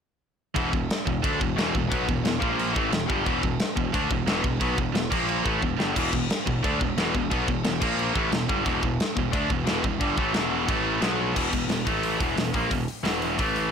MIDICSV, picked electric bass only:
0, 0, Header, 1, 2, 480
1, 0, Start_track
1, 0, Key_signature, 1, "minor"
1, 0, Tempo, 337838
1, 786, Time_signature, 4, 2, 24, 8
1, 19485, End_track
2, 0, Start_track
2, 0, Title_t, "Picked electric bass"
2, 0, Program_c, 0, 34
2, 795, Note_on_c, 0, 28, 88
2, 1013, Note_off_c, 0, 28, 0
2, 1034, Note_on_c, 0, 28, 87
2, 1253, Note_off_c, 0, 28, 0
2, 1514, Note_on_c, 0, 28, 78
2, 1733, Note_off_c, 0, 28, 0
2, 1759, Note_on_c, 0, 38, 91
2, 1975, Note_off_c, 0, 38, 0
2, 1997, Note_on_c, 0, 28, 77
2, 2213, Note_off_c, 0, 28, 0
2, 2224, Note_on_c, 0, 28, 96
2, 2446, Note_off_c, 0, 28, 0
2, 2484, Note_on_c, 0, 28, 85
2, 2697, Note_off_c, 0, 28, 0
2, 2727, Note_on_c, 0, 35, 94
2, 2938, Note_off_c, 0, 35, 0
2, 2962, Note_on_c, 0, 28, 89
2, 3175, Note_off_c, 0, 28, 0
2, 3187, Note_on_c, 0, 28, 82
2, 3407, Note_off_c, 0, 28, 0
2, 3442, Note_on_c, 0, 34, 88
2, 3878, Note_off_c, 0, 34, 0
2, 3929, Note_on_c, 0, 33, 99
2, 4138, Note_off_c, 0, 33, 0
2, 4149, Note_on_c, 0, 28, 84
2, 4367, Note_off_c, 0, 28, 0
2, 4400, Note_on_c, 0, 31, 103
2, 4613, Note_off_c, 0, 31, 0
2, 4642, Note_on_c, 0, 28, 94
2, 4854, Note_off_c, 0, 28, 0
2, 4879, Note_on_c, 0, 28, 89
2, 5092, Note_off_c, 0, 28, 0
2, 5354, Note_on_c, 0, 28, 78
2, 5569, Note_off_c, 0, 28, 0
2, 5604, Note_on_c, 0, 38, 93
2, 5814, Note_off_c, 0, 38, 0
2, 5835, Note_on_c, 0, 28, 84
2, 6028, Note_off_c, 0, 28, 0
2, 6037, Note_on_c, 0, 28, 101
2, 6269, Note_off_c, 0, 28, 0
2, 6308, Note_on_c, 0, 28, 83
2, 6525, Note_off_c, 0, 28, 0
2, 6545, Note_on_c, 0, 35, 99
2, 6764, Note_off_c, 0, 35, 0
2, 6789, Note_on_c, 0, 28, 89
2, 6993, Note_off_c, 0, 28, 0
2, 7001, Note_on_c, 0, 28, 75
2, 7231, Note_off_c, 0, 28, 0
2, 7266, Note_on_c, 0, 34, 87
2, 7707, Note_off_c, 0, 34, 0
2, 7747, Note_on_c, 0, 33, 93
2, 7965, Note_off_c, 0, 33, 0
2, 7991, Note_on_c, 0, 28, 85
2, 8199, Note_off_c, 0, 28, 0
2, 8207, Note_on_c, 0, 31, 95
2, 8433, Note_off_c, 0, 31, 0
2, 8473, Note_on_c, 0, 28, 94
2, 8687, Note_off_c, 0, 28, 0
2, 8706, Note_on_c, 0, 28, 81
2, 8923, Note_off_c, 0, 28, 0
2, 9198, Note_on_c, 0, 28, 82
2, 9410, Note_off_c, 0, 28, 0
2, 9438, Note_on_c, 0, 38, 89
2, 9650, Note_off_c, 0, 38, 0
2, 9674, Note_on_c, 0, 28, 89
2, 9875, Note_off_c, 0, 28, 0
2, 9884, Note_on_c, 0, 28, 100
2, 10111, Note_off_c, 0, 28, 0
2, 10157, Note_on_c, 0, 28, 83
2, 10369, Note_off_c, 0, 28, 0
2, 10392, Note_on_c, 0, 35, 91
2, 10606, Note_off_c, 0, 35, 0
2, 10626, Note_on_c, 0, 28, 88
2, 10843, Note_off_c, 0, 28, 0
2, 10861, Note_on_c, 0, 28, 74
2, 11080, Note_off_c, 0, 28, 0
2, 11107, Note_on_c, 0, 34, 98
2, 11547, Note_off_c, 0, 34, 0
2, 11586, Note_on_c, 0, 33, 95
2, 11799, Note_off_c, 0, 33, 0
2, 11807, Note_on_c, 0, 28, 88
2, 12033, Note_off_c, 0, 28, 0
2, 12068, Note_on_c, 0, 31, 99
2, 12284, Note_off_c, 0, 31, 0
2, 12305, Note_on_c, 0, 28, 99
2, 12522, Note_off_c, 0, 28, 0
2, 12546, Note_on_c, 0, 28, 94
2, 12763, Note_off_c, 0, 28, 0
2, 13027, Note_on_c, 0, 28, 84
2, 13244, Note_off_c, 0, 28, 0
2, 13261, Note_on_c, 0, 38, 102
2, 13481, Note_off_c, 0, 38, 0
2, 13500, Note_on_c, 0, 28, 85
2, 13720, Note_off_c, 0, 28, 0
2, 13727, Note_on_c, 0, 28, 104
2, 13954, Note_off_c, 0, 28, 0
2, 13984, Note_on_c, 0, 28, 88
2, 14203, Note_off_c, 0, 28, 0
2, 14212, Note_on_c, 0, 31, 90
2, 14437, Note_off_c, 0, 31, 0
2, 14450, Note_on_c, 0, 33, 100
2, 14676, Note_off_c, 0, 33, 0
2, 14692, Note_on_c, 0, 28, 87
2, 15141, Note_off_c, 0, 28, 0
2, 15183, Note_on_c, 0, 33, 94
2, 15627, Note_off_c, 0, 33, 0
2, 15651, Note_on_c, 0, 35, 105
2, 16102, Note_off_c, 0, 35, 0
2, 16146, Note_on_c, 0, 28, 88
2, 16366, Note_off_c, 0, 28, 0
2, 16378, Note_on_c, 0, 28, 76
2, 16582, Note_off_c, 0, 28, 0
2, 16591, Note_on_c, 0, 28, 75
2, 16828, Note_off_c, 0, 28, 0
2, 16858, Note_on_c, 0, 33, 89
2, 17308, Note_off_c, 0, 33, 0
2, 17336, Note_on_c, 0, 28, 94
2, 17555, Note_off_c, 0, 28, 0
2, 17564, Note_on_c, 0, 28, 85
2, 17797, Note_off_c, 0, 28, 0
2, 17822, Note_on_c, 0, 34, 95
2, 18048, Note_off_c, 0, 34, 0
2, 18061, Note_on_c, 0, 28, 78
2, 18287, Note_off_c, 0, 28, 0
2, 18521, Note_on_c, 0, 28, 82
2, 18981, Note_off_c, 0, 28, 0
2, 19025, Note_on_c, 0, 33, 99
2, 19475, Note_off_c, 0, 33, 0
2, 19485, End_track
0, 0, End_of_file